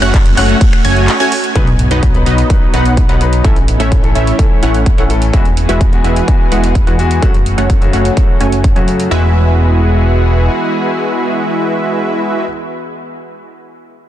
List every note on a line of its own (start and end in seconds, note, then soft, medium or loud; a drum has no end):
0.00 0.35 F#1 loud
0.00 1.54 A3 medium
0.00 0.14 A3 medium
0.00 1.54 C#4 medium
0.00 0.14 C#4 medium
0.00 1.52 F#4 medium
0.00 0.14 F#4 medium
0.00 0.14 C#5 medium
0.00 0.14 F#5 medium
0.00 0.14 F#6 medium
0.00 closed hi-hat soft
0.14 kick loud
0.14 clap loud
0.14 closed hi-hat medium
0.14 ride medium
0.26 closed hi-hat soft
0.37 0.55 F#1 loud
0.37 0.57 A3 medium
0.37 0.57 C#4 medium
0.37 0.57 F#4 medium
0.37 0.57 C#5 medium
0.37 0.57 F#5 loud
0.37 0.57 F#6 loud
0.37 clap medium
0.37 open hi-hat loud
0.49 closed hi-hat soft
0.61 kick loud
0.61 closed hi-hat medium
0.61 ride medium
0.73 finger snap medium
0.73 closed hi-hat soft
0.85 1.08 F#1 loud
0.85 1.17 A3 loud
0.85 1.17 C#4 medium
0.85 1.17 F#4 medium
0.85 1.17 C#5 medium
0.85 1.17 G#5 loud
0.85 1.17 G#6 loud
0.85 open hi-hat loud
0.96 closed hi-hat soft
1.08 finger snap medium
1.08 clap loud
1.08 closed hi-hat medium
1.08 ride medium
1.20 1.32 A3 medium
1.20 1.32 C#4 medium
1.20 1.32 F#4 medium
1.20 1.32 C#5 medium
1.20 1.32 G#5 loud
1.20 1.32 G#6 medium
1.20 closed hi-hat soft
1.32 open hi-hat loud
1.44 closed hi-hat soft
1.55 1.89 B1 medium
1.55 1.66 F#3 medium
1.55 1.68 F#3 medium
1.55 1.66 B3 medium
1.55 1.68 B3 medium
1.55 3.43 B3 medium
1.55 1.68 D#4 medium
1.55 3.43 D#4 medium
1.55 1.66 D#4 medium
1.55 3.43 F#4 medium
1.55 1.68 B4 medium
1.55 1.66 B4 loud
1.55 1.68 D#5 medium
1.55 kick loud
1.55 closed hi-hat medium
1.55 sub drop medium
1.67 closed hi-hat soft
1.79 closed hi-hat medium
1.90 2.24 B1 loud
1.90 2.11 F#3 medium
1.90 2.03 F#3 medium
1.90 2.12 B3 medium
1.90 2.03 B3 medium
1.90 2.03 D#4 medium
1.90 2.12 D#4 medium
1.90 2.03 B4 medium
1.90 2.12 B4 medium
1.90 2.03 D#5 medium
1.90 closed hi-hat medium
2.03 kick loud
2.03 closed hi-hat medium
2.14 2.47 F#3 medium
2.14 2.47 B3 medium
2.14 2.47 D#4 medium
2.14 2.47 B4 medium
2.14 closed hi-hat soft
2.26 2.44 B1 medium
2.26 2.46 F#3 medium
2.26 2.46 B3 medium
2.26 2.46 D#4 medium
2.26 2.46 B4 medium
2.26 2.46 D#5 loud
2.26 closed hi-hat medium
2.38 closed hi-hat medium
2.50 2.71 F#3 medium
2.50 2.71 B3 medium
2.50 2.71 D#4 medium
2.50 2.72 B4 medium
2.50 kick loud
2.50 closed hi-hat medium
2.73 3.07 B1 medium
2.73 2.90 F#3 medium
2.73 3.06 F#3 medium
2.73 2.90 B3 medium
2.73 3.06 B3 medium
2.73 3.06 D#4 medium
2.73 2.90 D#4 medium
2.73 3.06 B4 medium
2.73 2.90 B4 medium
2.73 3.06 F#5 loud
2.73 closed hi-hat medium
2.85 closed hi-hat medium
2.97 kick loud
2.97 closed hi-hat medium
3.08 3.42 B1 medium
3.08 3.18 F#3 medium
3.08 3.21 F#3 medium
3.08 3.18 B3 medium
3.08 3.21 B3 medium
3.08 3.21 D#4 medium
3.08 3.18 D#4 medium
3.08 3.21 B4 medium
3.08 3.18 B4 medium
3.08 3.21 F#5 medium
3.08 closed hi-hat soft
3.20 3.41 F#3 medium
3.20 3.42 B3 medium
3.20 3.42 D#4 medium
3.20 3.42 B4 loud
3.20 closed hi-hat medium
3.33 closed hi-hat medium
3.44 3.78 A1 medium
3.44 3.54 E3 medium
3.44 3.55 A3 medium
3.44 3.57 A3 medium
3.44 5.32 A3 medium
3.44 3.57 C#4 medium
3.44 5.32 C#4 medium
3.44 3.55 C#4 medium
3.44 3.57 E4 medium
3.44 5.32 E4 medium
3.44 3.55 A4 loud
3.44 3.57 C#5 medium
3.44 3.57 E5 medium
3.44 kick loud
3.44 closed hi-hat medium
3.56 closed hi-hat soft
3.68 closed hi-hat medium
3.79 4.13 A1 medium
3.79 4.00 E3 medium
3.79 4.01 A3 medium
3.79 3.92 A3 medium
3.79 3.92 C#4 medium
3.79 4.01 C#4 medium
3.79 3.92 E4 medium
3.79 4.01 A4 medium
3.79 3.92 C#5 medium
3.79 3.92 E5 medium
3.79 closed hi-hat soft
3.92 kick loud
3.92 closed hi-hat medium
4.03 4.36 E3 medium
4.03 4.36 A3 medium
4.03 4.36 C#4 medium
4.03 4.36 A4 medium
4.03 closed hi-hat soft
4.15 4.33 A1 medium
4.15 4.35 A3 medium
4.15 4.35 C#4 medium
4.15 4.35 E4 medium
4.15 4.35 C#5 medium
4.15 4.35 E5 medium
4.15 closed hi-hat medium
4.27 closed hi-hat soft
4.38 4.60 E3 medium
4.38 4.60 A3 medium
4.38 4.60 C#4 medium
4.38 4.61 A4 medium
4.38 kick loud
4.38 closed hi-hat medium
4.62 4.96 A1 medium
4.62 4.79 E3 medium
4.62 4.79 A3 medium
4.62 4.95 A3 medium
4.62 4.95 C#4 medium
4.62 4.79 C#4 medium
4.62 4.95 E4 medium
4.62 4.79 A4 medium
4.62 4.95 C#5 medium
4.62 4.95 F#5 loud
4.62 closed hi-hat medium
4.74 closed hi-hat soft
4.86 kick loud
4.86 closed hi-hat medium
4.97 5.31 A1 loud
4.97 5.07 E3 medium
4.97 5.07 A3 medium
4.97 5.10 A3 medium
4.97 5.10 C#4 medium
4.97 5.07 C#4 medium
4.97 5.10 E4 medium
4.97 5.07 A4 medium
4.97 5.10 C#5 medium
4.97 5.10 F#5 medium
4.97 closed hi-hat soft
5.09 5.30 E3 medium
5.09 5.30 A3 medium
5.09 5.31 C#4 medium
5.09 5.31 A4 loud
5.09 closed hi-hat medium
5.22 closed hi-hat soft
5.33 5.67 E1 medium
5.33 5.43 E3 medium
5.33 7.21 E3 medium
5.33 5.44 G#3 medium
5.33 5.46 G#3 medium
5.33 7.21 B3 medium
5.33 5.44 B3 medium
5.33 5.46 E4 medium
5.33 9.08 F#4 medium
5.33 5.46 F#4 medium
5.33 5.44 F#4 loud
5.33 7.21 G#4 medium
5.33 5.46 B4 medium
5.33 5.46 E5 medium
5.33 kick loud
5.33 closed hi-hat medium
5.45 closed hi-hat soft
5.57 closed hi-hat medium
5.68 6.02 E1 medium
5.68 5.89 E3 medium
5.68 5.90 G#3 medium
5.68 5.81 G#3 medium
5.68 5.90 B3 medium
5.68 5.81 E4 medium
5.68 5.81 F#4 medium
5.68 5.90 F#4 medium
5.68 5.81 B4 medium
5.68 5.81 E5 medium
5.68 closed hi-hat soft
5.81 kick loud
5.81 closed hi-hat medium
5.92 6.25 E3 medium
5.92 6.25 G#3 medium
5.92 6.25 B3 medium
5.92 6.25 F#4 medium
5.92 closed hi-hat soft
6.04 6.22 E1 medium
6.04 6.24 G#3 medium
6.04 6.24 E4 medium
6.04 6.24 F#4 medium
6.04 6.24 B4 medium
6.04 6.24 E5 medium
6.04 closed hi-hat medium
6.16 closed hi-hat soft
6.27 6.49 E3 medium
6.27 6.49 G#3 medium
6.27 6.49 B3 medium
6.27 6.50 F#4 medium
6.27 kick loud
6.27 closed hi-hat medium
6.51 6.85 E1 medium
6.51 6.68 E3 medium
6.51 6.68 G#3 medium
6.51 6.84 G#3 medium
6.51 6.68 B3 medium
6.51 6.84 E4 medium
6.51 6.84 F#4 medium
6.51 6.68 F#4 medium
6.51 6.84 B4 medium
6.51 6.84 F#5 loud
6.51 closed hi-hat medium
6.64 closed hi-hat soft
6.75 kick loud
6.75 closed hi-hat medium
6.86 7.20 E2 medium
6.86 6.96 E3 medium
6.86 6.96 G#3 medium
6.86 6.99 G#3 medium
6.86 6.96 B3 medium
6.86 6.99 E4 medium
6.86 6.99 F#4 medium
6.86 6.96 F#4 medium
6.86 6.99 B4 medium
6.86 6.99 F#5 medium
6.86 closed hi-hat soft
6.99 7.19 E3 medium
6.99 7.20 G#3 medium
6.99 7.20 B3 medium
6.99 7.20 F#4 loud
6.99 closed hi-hat medium
7.11 closed hi-hat soft
7.22 7.55 F#1 medium
7.22 7.32 C#3 medium
7.22 7.33 F#3 medium
7.22 7.35 A3 medium
7.22 9.10 A3 medium
7.22 7.33 A3 medium
7.22 7.35 C#4 medium
7.22 9.10 C#4 medium
7.22 7.35 F#4 medium
7.22 7.33 F#4 loud
7.22 7.35 C#5 medium
7.22 7.35 F#5 medium
7.22 kick loud
7.22 closed hi-hat medium
7.34 closed hi-hat soft
7.46 closed hi-hat medium
7.57 7.91 F#1 medium
7.57 7.78 C#3 medium
7.57 7.79 F#3 medium
7.57 7.70 A3 medium
7.57 7.79 A3 medium
7.57 7.70 C#4 medium
7.57 7.70 F#4 medium
7.57 7.79 F#4 medium
7.57 7.70 C#5 medium
7.57 7.70 F#5 medium
7.57 closed hi-hat soft
7.70 kick loud
7.70 closed hi-hat medium
7.81 8.14 C#3 medium
7.81 8.14 F#3 medium
7.81 8.14 A3 medium
7.81 8.14 F#4 medium
7.81 closed hi-hat soft
7.93 8.11 F#1 medium
7.93 8.13 A3 medium
7.93 8.13 C#4 medium
7.93 8.13 F#4 medium
7.93 8.13 C#5 medium
7.93 8.13 F#5 medium
7.93 closed hi-hat medium
8.05 closed hi-hat soft
8.16 8.38 C#3 medium
8.16 8.38 F#3 medium
8.16 8.38 A3 medium
8.16 8.39 F#4 medium
8.16 kick loud
8.16 closed hi-hat medium
8.40 8.74 F#1 medium
8.40 8.73 A3 medium
8.40 8.73 C#4 medium
8.40 8.73 F#4 medium
8.40 8.73 C#5 medium
8.40 8.73 G#5 loud
8.40 closed hi-hat medium
8.52 closed hi-hat soft
8.64 kick loud
8.64 closed hi-hat medium
8.75 9.09 F#2 loud
8.75 9.08 C#3 medium
8.75 9.08 F#3 medium
8.75 8.88 A3 medium
8.75 9.09 A3 medium
8.75 8.88 C#4 medium
8.75 8.88 F#4 medium
8.75 9.09 F#4 medium
8.75 8.88 C#5 medium
8.75 8.88 G#5 medium
8.75 closed hi-hat soft
8.88 closed hi-hat medium
9.00 closed hi-hat soft
9.10 10.49 E1 medium
9.10 12.43 E3 medium
9.10 12.45 E3 medium
9.10 12.44 G#3 medium
9.10 12.45 G#3 medium
9.10 12.45 B3 medium
9.10 12.46 B3 medium
9.10 12.45 E4 medium
9.10 12.45 F#4 medium
9.10 12.47 F#4 medium
9.10 12.45 G#4 medium
9.10 12.45 B4 medium
9.10 12.45 E5 medium